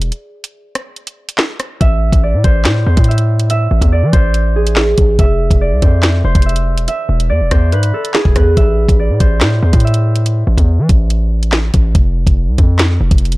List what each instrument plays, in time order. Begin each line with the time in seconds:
0.01 808-style bass E1, closed hi-hat
0.12 closed hi-hat
0.44 closed hi-hat
0.75 cross-stick, closed hi-hat
0.96 closed hi-hat
1.07 closed hi-hat
1.29 closed hi-hat
1.38 snare, clap
1.60 cross-stick, closed hi-hat
1.81 808-style bass A1, harp E5, kick, closed hi-hat
2.13 808-style bass A1, kick, closed hi-hat
2.23 harp D5
2.34 808-style bass A2
2.44 808-style bass A1, harp C5, kick, closed hi-hat
2.65 808-style bass A2, snare, clap, closed hi-hat
2.86 808-style bass E2, harp C5
2.97 808-style bass A2, kick, closed hi-hat
3.04 closed hi-hat
3.08 harp E5, closed hi-hat
3.18 closed hi-hat
3.40 closed hi-hat
3.50 harp E5, closed hi-hat
3.71 808-style bass A1
3.82 808-style bass E2, kick, closed hi-hat
3.92 harp D5
4.03 808-style bass E3
4.13 808-style bass A1, harp C5, kick, closed hi-hat
4.34 closed hi-hat
4.56 harp G#4
4.67 closed hi-hat
4.76 snare, clap
4.98 808-style bass A1, kick, closed hi-hat
5.19 808-style bass F1, harp E5, kick, closed hi-hat
5.51 808-style bass F1, kick, closed hi-hat
5.61 harp D5
5.72 808-style bass C2
5.82 808-style bass F2, harp C5, kick, closed hi-hat
6.03 snare, clap, closed hi-hat
6.25 808-style bass F1, harp C5
6.35 808-style bass F1, kick, closed hi-hat
6.42 harp E5, closed hi-hat
6.49 closed hi-hat
6.56 closed hi-hat
6.77 808-style bass E1, closed hi-hat
6.88 harp E5, closed hi-hat
7.09 808-style bass E1
7.20 closed hi-hat
7.30 808-style bass E2, harp D5
7.41 808-style bass E1
7.51 808-style bass E2, harp C5, kick, cross-stick, closed hi-hat
7.72 808-style bass G#2, harp B4, closed hi-hat
7.83 closed hi-hat
7.94 harp A4
8.05 closed hi-hat
8.14 harp G#4, snare, clap
8.25 808-style bass E1, kick
8.36 808-style bass E2, harp B4, kick, cross-stick, closed hi-hat
8.57 808-style bass A1, harp E5, kick, closed hi-hat
8.89 808-style bass A1, kick, closed hi-hat
8.99 harp D5
9.10 808-style bass A2
9.20 808-style bass A1, harp C5, kick, closed hi-hat
9.41 808-style bass A2, snare, clap, closed hi-hat
9.62 808-style bass E2, harp C5
9.73 808-style bass A2, kick, closed hi-hat
9.80 closed hi-hat
9.84 harp E5, closed hi-hat
9.94 closed hi-hat
10.16 closed hi-hat
10.26 closed hi-hat
10.47 808-style bass A1
10.58 808-style bass E2, kick, closed hi-hat
10.79 808-style bass E3
10.89 808-style bass A1, kick, closed hi-hat
11.10 closed hi-hat
11.43 closed hi-hat
11.52 snare, clap
11.74 808-style bass A1, kick, closed hi-hat
11.95 808-style bass F1, kick, closed hi-hat
12.27 808-style bass F1, kick, closed hi-hat
12.48 808-style bass C2
12.58 808-style bass F2, kick, closed hi-hat
12.79 snare, clap, closed hi-hat
13.01 808-style bass F1
13.11 808-style bass F1, kick, closed hi-hat
13.18 closed hi-hat
13.25 closed hi-hat
13.32 closed hi-hat